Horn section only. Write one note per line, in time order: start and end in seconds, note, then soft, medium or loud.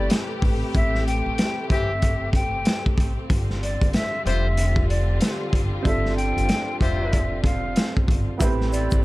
1.70 1.91 E3 loud
1.70 1.91 C4 loud
1.70 1.91 G4 loud
4.25 4.46 G3 loud
4.25 4.46 F4 loud
4.25 4.46 C5 loud
6.81 7.25 G3 loud
6.81 7.25 F4 loud
6.81 7.25 C5 loud